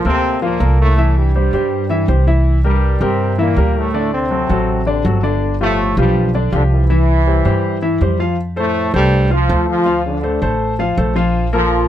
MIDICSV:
0, 0, Header, 1, 4, 480
1, 0, Start_track
1, 0, Key_signature, -1, "major"
1, 0, Tempo, 370370
1, 1262, Time_signature, 4, 2, 24, 8
1, 15396, End_track
2, 0, Start_track
2, 0, Title_t, "Grand piano"
2, 0, Program_c, 0, 0
2, 68, Note_on_c, 0, 58, 72
2, 76, Note_on_c, 0, 69, 75
2, 77, Note_on_c, 0, 70, 70
2, 459, Note_off_c, 0, 58, 0
2, 464, Note_off_c, 0, 69, 0
2, 464, Note_off_c, 0, 70, 0
2, 546, Note_on_c, 0, 53, 80
2, 548, Note_on_c, 0, 65, 74
2, 554, Note_on_c, 0, 77, 71
2, 741, Note_off_c, 0, 53, 0
2, 742, Note_off_c, 0, 65, 0
2, 746, Note_off_c, 0, 77, 0
2, 776, Note_on_c, 0, 58, 66
2, 778, Note_on_c, 0, 69, 68
2, 783, Note_on_c, 0, 70, 62
2, 1172, Note_off_c, 0, 58, 0
2, 1173, Note_off_c, 0, 69, 0
2, 1176, Note_off_c, 0, 70, 0
2, 1268, Note_on_c, 0, 52, 69
2, 1270, Note_on_c, 0, 64, 74
2, 1277, Note_on_c, 0, 76, 79
2, 1659, Note_off_c, 0, 52, 0
2, 1660, Note_off_c, 0, 64, 0
2, 1664, Note_off_c, 0, 76, 0
2, 1755, Note_on_c, 0, 55, 66
2, 1759, Note_on_c, 0, 67, 65
2, 1762, Note_on_c, 0, 72, 62
2, 1946, Note_off_c, 0, 55, 0
2, 1948, Note_off_c, 0, 67, 0
2, 1950, Note_off_c, 0, 72, 0
2, 1988, Note_on_c, 0, 55, 70
2, 1994, Note_on_c, 0, 67, 73
2, 1997, Note_on_c, 0, 72, 68
2, 2378, Note_off_c, 0, 55, 0
2, 2382, Note_off_c, 0, 67, 0
2, 2384, Note_off_c, 0, 72, 0
2, 2456, Note_on_c, 0, 52, 72
2, 2461, Note_on_c, 0, 64, 66
2, 2467, Note_on_c, 0, 76, 80
2, 2655, Note_off_c, 0, 52, 0
2, 2658, Note_off_c, 0, 64, 0
2, 2661, Note_off_c, 0, 76, 0
2, 2698, Note_on_c, 0, 55, 62
2, 2705, Note_on_c, 0, 67, 62
2, 2706, Note_on_c, 0, 72, 70
2, 2896, Note_off_c, 0, 55, 0
2, 2900, Note_off_c, 0, 67, 0
2, 2900, Note_off_c, 0, 72, 0
2, 2941, Note_on_c, 0, 52, 69
2, 2947, Note_on_c, 0, 64, 76
2, 2951, Note_on_c, 0, 76, 73
2, 3334, Note_off_c, 0, 52, 0
2, 3338, Note_off_c, 0, 64, 0
2, 3340, Note_off_c, 0, 76, 0
2, 3424, Note_on_c, 0, 55, 64
2, 3428, Note_on_c, 0, 67, 76
2, 3434, Note_on_c, 0, 70, 69
2, 3816, Note_off_c, 0, 55, 0
2, 3818, Note_off_c, 0, 67, 0
2, 3822, Note_off_c, 0, 70, 0
2, 3901, Note_on_c, 0, 55, 72
2, 3907, Note_on_c, 0, 67, 77
2, 3909, Note_on_c, 0, 70, 69
2, 4294, Note_off_c, 0, 55, 0
2, 4298, Note_off_c, 0, 67, 0
2, 4299, Note_off_c, 0, 70, 0
2, 4383, Note_on_c, 0, 52, 76
2, 4390, Note_on_c, 0, 64, 75
2, 4395, Note_on_c, 0, 76, 72
2, 4579, Note_off_c, 0, 52, 0
2, 4583, Note_off_c, 0, 64, 0
2, 4586, Note_off_c, 0, 76, 0
2, 4625, Note_on_c, 0, 55, 71
2, 4630, Note_on_c, 0, 67, 65
2, 4633, Note_on_c, 0, 70, 68
2, 5017, Note_off_c, 0, 55, 0
2, 5020, Note_off_c, 0, 67, 0
2, 5021, Note_off_c, 0, 70, 0
2, 5104, Note_on_c, 0, 50, 76
2, 5109, Note_on_c, 0, 62, 76
2, 5114, Note_on_c, 0, 74, 77
2, 5496, Note_off_c, 0, 50, 0
2, 5499, Note_off_c, 0, 62, 0
2, 5502, Note_off_c, 0, 74, 0
2, 5583, Note_on_c, 0, 54, 67
2, 5587, Note_on_c, 0, 66, 62
2, 5592, Note_on_c, 0, 69, 61
2, 5778, Note_off_c, 0, 54, 0
2, 5781, Note_off_c, 0, 66, 0
2, 5784, Note_off_c, 0, 69, 0
2, 5828, Note_on_c, 0, 54, 74
2, 5831, Note_on_c, 0, 66, 70
2, 5835, Note_on_c, 0, 69, 76
2, 6218, Note_off_c, 0, 54, 0
2, 6220, Note_off_c, 0, 66, 0
2, 6223, Note_off_c, 0, 69, 0
2, 6304, Note_on_c, 0, 50, 75
2, 6309, Note_on_c, 0, 62, 78
2, 6315, Note_on_c, 0, 74, 74
2, 6499, Note_off_c, 0, 50, 0
2, 6502, Note_off_c, 0, 62, 0
2, 6506, Note_off_c, 0, 74, 0
2, 6549, Note_on_c, 0, 54, 68
2, 6549, Note_on_c, 0, 66, 66
2, 6556, Note_on_c, 0, 69, 64
2, 6743, Note_off_c, 0, 54, 0
2, 6743, Note_off_c, 0, 66, 0
2, 6746, Note_off_c, 0, 69, 0
2, 6780, Note_on_c, 0, 50, 80
2, 6781, Note_on_c, 0, 62, 77
2, 6788, Note_on_c, 0, 74, 74
2, 7174, Note_off_c, 0, 50, 0
2, 7175, Note_off_c, 0, 62, 0
2, 7179, Note_off_c, 0, 74, 0
2, 7267, Note_on_c, 0, 53, 72
2, 7270, Note_on_c, 0, 65, 67
2, 7272, Note_on_c, 0, 67, 71
2, 7658, Note_off_c, 0, 53, 0
2, 7660, Note_off_c, 0, 65, 0
2, 7662, Note_off_c, 0, 67, 0
2, 7745, Note_on_c, 0, 53, 78
2, 7750, Note_on_c, 0, 65, 74
2, 7754, Note_on_c, 0, 67, 75
2, 8137, Note_off_c, 0, 53, 0
2, 8140, Note_off_c, 0, 65, 0
2, 8142, Note_off_c, 0, 67, 0
2, 8222, Note_on_c, 0, 50, 74
2, 8225, Note_on_c, 0, 62, 80
2, 8230, Note_on_c, 0, 74, 76
2, 8419, Note_off_c, 0, 50, 0
2, 8420, Note_off_c, 0, 62, 0
2, 8423, Note_off_c, 0, 74, 0
2, 8452, Note_on_c, 0, 53, 67
2, 8453, Note_on_c, 0, 65, 71
2, 8460, Note_on_c, 0, 67, 73
2, 8850, Note_off_c, 0, 53, 0
2, 8851, Note_off_c, 0, 65, 0
2, 8855, Note_off_c, 0, 67, 0
2, 8941, Note_on_c, 0, 52, 80
2, 8943, Note_on_c, 0, 64, 79
2, 8947, Note_on_c, 0, 76, 80
2, 9335, Note_off_c, 0, 52, 0
2, 9337, Note_off_c, 0, 64, 0
2, 9339, Note_off_c, 0, 76, 0
2, 9420, Note_on_c, 0, 55, 65
2, 9425, Note_on_c, 0, 67, 64
2, 9427, Note_on_c, 0, 72, 58
2, 9618, Note_off_c, 0, 55, 0
2, 9621, Note_off_c, 0, 67, 0
2, 9622, Note_off_c, 0, 72, 0
2, 9658, Note_on_c, 0, 55, 72
2, 9661, Note_on_c, 0, 67, 75
2, 9665, Note_on_c, 0, 72, 73
2, 10054, Note_off_c, 0, 55, 0
2, 10056, Note_off_c, 0, 67, 0
2, 10058, Note_off_c, 0, 72, 0
2, 10138, Note_on_c, 0, 52, 72
2, 10139, Note_on_c, 0, 64, 72
2, 10143, Note_on_c, 0, 76, 76
2, 10337, Note_off_c, 0, 52, 0
2, 10337, Note_off_c, 0, 64, 0
2, 10340, Note_off_c, 0, 76, 0
2, 10386, Note_on_c, 0, 55, 67
2, 10391, Note_on_c, 0, 67, 60
2, 10396, Note_on_c, 0, 72, 71
2, 10582, Note_off_c, 0, 55, 0
2, 10585, Note_off_c, 0, 67, 0
2, 10588, Note_off_c, 0, 72, 0
2, 10619, Note_on_c, 0, 53, 73
2, 10624, Note_on_c, 0, 65, 73
2, 10631, Note_on_c, 0, 77, 81
2, 10818, Note_off_c, 0, 53, 0
2, 10821, Note_off_c, 0, 65, 0
2, 10825, Note_off_c, 0, 77, 0
2, 11097, Note_on_c, 0, 57, 72
2, 11103, Note_on_c, 0, 69, 73
2, 11108, Note_on_c, 0, 72, 77
2, 11494, Note_off_c, 0, 57, 0
2, 11497, Note_off_c, 0, 69, 0
2, 11500, Note_off_c, 0, 72, 0
2, 11578, Note_on_c, 0, 57, 72
2, 11583, Note_on_c, 0, 69, 78
2, 11584, Note_on_c, 0, 72, 82
2, 11974, Note_off_c, 0, 57, 0
2, 11977, Note_off_c, 0, 69, 0
2, 11978, Note_off_c, 0, 72, 0
2, 12057, Note_on_c, 0, 53, 75
2, 12063, Note_on_c, 0, 65, 74
2, 12069, Note_on_c, 0, 77, 74
2, 12257, Note_off_c, 0, 53, 0
2, 12260, Note_off_c, 0, 65, 0
2, 12264, Note_off_c, 0, 77, 0
2, 12298, Note_on_c, 0, 57, 74
2, 12302, Note_on_c, 0, 69, 70
2, 12307, Note_on_c, 0, 72, 64
2, 12695, Note_off_c, 0, 57, 0
2, 12697, Note_off_c, 0, 69, 0
2, 12700, Note_off_c, 0, 72, 0
2, 12776, Note_on_c, 0, 53, 75
2, 12780, Note_on_c, 0, 65, 80
2, 12783, Note_on_c, 0, 77, 81
2, 13173, Note_off_c, 0, 53, 0
2, 13176, Note_off_c, 0, 65, 0
2, 13178, Note_off_c, 0, 77, 0
2, 13260, Note_on_c, 0, 57, 74
2, 13265, Note_on_c, 0, 69, 66
2, 13269, Note_on_c, 0, 72, 70
2, 13459, Note_off_c, 0, 57, 0
2, 13462, Note_off_c, 0, 69, 0
2, 13465, Note_off_c, 0, 72, 0
2, 13501, Note_on_c, 0, 57, 80
2, 13507, Note_on_c, 0, 69, 81
2, 13509, Note_on_c, 0, 72, 80
2, 13896, Note_off_c, 0, 57, 0
2, 13900, Note_off_c, 0, 69, 0
2, 13901, Note_off_c, 0, 72, 0
2, 13985, Note_on_c, 0, 53, 80
2, 13989, Note_on_c, 0, 65, 78
2, 13993, Note_on_c, 0, 77, 84
2, 14182, Note_off_c, 0, 53, 0
2, 14185, Note_off_c, 0, 65, 0
2, 14187, Note_off_c, 0, 77, 0
2, 14221, Note_on_c, 0, 57, 74
2, 14225, Note_on_c, 0, 69, 77
2, 14230, Note_on_c, 0, 72, 72
2, 14420, Note_off_c, 0, 57, 0
2, 14422, Note_off_c, 0, 69, 0
2, 14425, Note_off_c, 0, 72, 0
2, 14458, Note_on_c, 0, 53, 87
2, 14466, Note_on_c, 0, 65, 86
2, 14468, Note_on_c, 0, 77, 85
2, 14855, Note_off_c, 0, 53, 0
2, 14860, Note_off_c, 0, 65, 0
2, 14861, Note_off_c, 0, 77, 0
2, 14939, Note_on_c, 0, 58, 74
2, 14943, Note_on_c, 0, 69, 81
2, 14949, Note_on_c, 0, 70, 77
2, 15336, Note_off_c, 0, 58, 0
2, 15338, Note_off_c, 0, 69, 0
2, 15342, Note_off_c, 0, 70, 0
2, 15396, End_track
3, 0, Start_track
3, 0, Title_t, "Trombone section"
3, 0, Program_c, 1, 61
3, 75, Note_on_c, 1, 60, 99
3, 84, Note_on_c, 1, 48, 79
3, 515, Note_off_c, 1, 60, 0
3, 520, Note_off_c, 1, 48, 0
3, 558, Note_on_c, 1, 58, 88
3, 571, Note_on_c, 1, 46, 77
3, 997, Note_off_c, 1, 58, 0
3, 1004, Note_off_c, 1, 46, 0
3, 1041, Note_on_c, 1, 57, 95
3, 1052, Note_on_c, 1, 45, 76
3, 1478, Note_off_c, 1, 57, 0
3, 1484, Note_off_c, 1, 45, 0
3, 1522, Note_on_c, 1, 55, 81
3, 1533, Note_on_c, 1, 43, 60
3, 2899, Note_off_c, 1, 55, 0
3, 2904, Note_off_c, 1, 43, 0
3, 3433, Note_on_c, 1, 55, 83
3, 3441, Note_on_c, 1, 43, 66
3, 3873, Note_off_c, 1, 55, 0
3, 3878, Note_off_c, 1, 43, 0
3, 3918, Note_on_c, 1, 60, 96
3, 3920, Note_on_c, 1, 48, 76
3, 4389, Note_off_c, 1, 60, 0
3, 4390, Note_off_c, 1, 48, 0
3, 4397, Note_on_c, 1, 58, 82
3, 4401, Note_on_c, 1, 46, 72
3, 4835, Note_off_c, 1, 58, 0
3, 4838, Note_off_c, 1, 46, 0
3, 4877, Note_on_c, 1, 57, 86
3, 4880, Note_on_c, 1, 45, 70
3, 5348, Note_off_c, 1, 57, 0
3, 5350, Note_off_c, 1, 45, 0
3, 5357, Note_on_c, 1, 60, 84
3, 5364, Note_on_c, 1, 48, 70
3, 6737, Note_off_c, 1, 60, 0
3, 6741, Note_off_c, 1, 48, 0
3, 7275, Note_on_c, 1, 57, 108
3, 7280, Note_on_c, 1, 45, 76
3, 7715, Note_off_c, 1, 57, 0
3, 7718, Note_off_c, 1, 45, 0
3, 7754, Note_on_c, 1, 55, 90
3, 7759, Note_on_c, 1, 43, 69
3, 8195, Note_off_c, 1, 55, 0
3, 8197, Note_off_c, 1, 43, 0
3, 8476, Note_on_c, 1, 62, 61
3, 8478, Note_on_c, 1, 50, 84
3, 8581, Note_off_c, 1, 62, 0
3, 8583, Note_off_c, 1, 50, 0
3, 8716, Note_on_c, 1, 52, 92
3, 8717, Note_on_c, 1, 64, 70
3, 10579, Note_off_c, 1, 52, 0
3, 10579, Note_off_c, 1, 64, 0
3, 11123, Note_on_c, 1, 45, 76
3, 11125, Note_on_c, 1, 57, 103
3, 11561, Note_off_c, 1, 45, 0
3, 11562, Note_off_c, 1, 57, 0
3, 11606, Note_on_c, 1, 55, 98
3, 11610, Note_on_c, 1, 43, 78
3, 12042, Note_off_c, 1, 55, 0
3, 12045, Note_off_c, 1, 43, 0
3, 12082, Note_on_c, 1, 53, 91
3, 12087, Note_on_c, 1, 65, 68
3, 12521, Note_off_c, 1, 53, 0
3, 12523, Note_off_c, 1, 65, 0
3, 12561, Note_on_c, 1, 53, 99
3, 12566, Note_on_c, 1, 65, 75
3, 13000, Note_off_c, 1, 53, 0
3, 13003, Note_off_c, 1, 65, 0
3, 13040, Note_on_c, 1, 50, 80
3, 13051, Note_on_c, 1, 62, 62
3, 13703, Note_off_c, 1, 50, 0
3, 13709, Note_off_c, 1, 62, 0
3, 14963, Note_on_c, 1, 53, 94
3, 14970, Note_on_c, 1, 65, 77
3, 15396, Note_off_c, 1, 53, 0
3, 15396, Note_off_c, 1, 65, 0
3, 15396, End_track
4, 0, Start_track
4, 0, Title_t, "Upright bass"
4, 0, Program_c, 2, 32
4, 62, Note_on_c, 2, 38, 79
4, 731, Note_off_c, 2, 38, 0
4, 780, Note_on_c, 2, 36, 94
4, 1904, Note_off_c, 2, 36, 0
4, 1982, Note_on_c, 2, 43, 84
4, 2651, Note_off_c, 2, 43, 0
4, 2698, Note_on_c, 2, 36, 90
4, 3823, Note_off_c, 2, 36, 0
4, 3897, Note_on_c, 2, 43, 88
4, 4568, Note_off_c, 2, 43, 0
4, 4619, Note_on_c, 2, 38, 90
4, 5744, Note_off_c, 2, 38, 0
4, 5823, Note_on_c, 2, 33, 86
4, 6492, Note_off_c, 2, 33, 0
4, 6540, Note_on_c, 2, 31, 91
4, 7665, Note_off_c, 2, 31, 0
4, 7736, Note_on_c, 2, 35, 96
4, 8409, Note_off_c, 2, 35, 0
4, 8456, Note_on_c, 2, 36, 92
4, 9584, Note_off_c, 2, 36, 0
4, 9655, Note_on_c, 2, 43, 83
4, 10328, Note_off_c, 2, 43, 0
4, 10377, Note_on_c, 2, 41, 84
4, 11505, Note_off_c, 2, 41, 0
4, 11582, Note_on_c, 2, 36, 92
4, 12253, Note_off_c, 2, 36, 0
4, 12304, Note_on_c, 2, 38, 100
4, 13429, Note_off_c, 2, 38, 0
4, 13501, Note_on_c, 2, 33, 92
4, 14173, Note_off_c, 2, 33, 0
4, 14223, Note_on_c, 2, 34, 100
4, 15350, Note_off_c, 2, 34, 0
4, 15396, End_track
0, 0, End_of_file